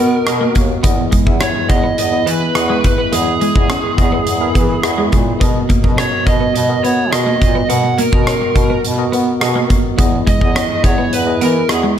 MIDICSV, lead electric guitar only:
0, 0, Header, 1, 2, 480
1, 0, Start_track
1, 0, Tempo, 571429
1, 708, Time_signature, 4, 2, 24, 8
1, 10072, End_track
2, 0, Start_track
2, 0, Title_t, "Lead electric guitar"
2, 0, Program_c, 0, 29
2, 0, Note_on_c, 0, 70, 72
2, 439, Note_off_c, 0, 70, 0
2, 1191, Note_on_c, 0, 73, 90
2, 1425, Note_off_c, 0, 73, 0
2, 1428, Note_on_c, 0, 75, 95
2, 1664, Note_off_c, 0, 75, 0
2, 1674, Note_on_c, 0, 75, 100
2, 1905, Note_on_c, 0, 71, 89
2, 1918, Note_off_c, 0, 75, 0
2, 2389, Note_off_c, 0, 71, 0
2, 2399, Note_on_c, 0, 71, 77
2, 2635, Note_off_c, 0, 71, 0
2, 2638, Note_on_c, 0, 68, 66
2, 4280, Note_off_c, 0, 68, 0
2, 5034, Note_on_c, 0, 73, 84
2, 5254, Note_off_c, 0, 73, 0
2, 5266, Note_on_c, 0, 75, 76
2, 5495, Note_off_c, 0, 75, 0
2, 5505, Note_on_c, 0, 75, 88
2, 5742, Note_off_c, 0, 75, 0
2, 5745, Note_on_c, 0, 73, 78
2, 5978, Note_off_c, 0, 73, 0
2, 5981, Note_on_c, 0, 75, 83
2, 6459, Note_on_c, 0, 78, 91
2, 6480, Note_off_c, 0, 75, 0
2, 6701, Note_on_c, 0, 70, 76
2, 6711, Note_off_c, 0, 78, 0
2, 7391, Note_off_c, 0, 70, 0
2, 8632, Note_on_c, 0, 75, 100
2, 9077, Note_off_c, 0, 75, 0
2, 9112, Note_on_c, 0, 73, 91
2, 9334, Note_off_c, 0, 73, 0
2, 9351, Note_on_c, 0, 71, 89
2, 9590, Note_off_c, 0, 71, 0
2, 9594, Note_on_c, 0, 70, 87
2, 9814, Note_off_c, 0, 70, 0
2, 9831, Note_on_c, 0, 68, 76
2, 9896, Note_off_c, 0, 68, 0
2, 10072, End_track
0, 0, End_of_file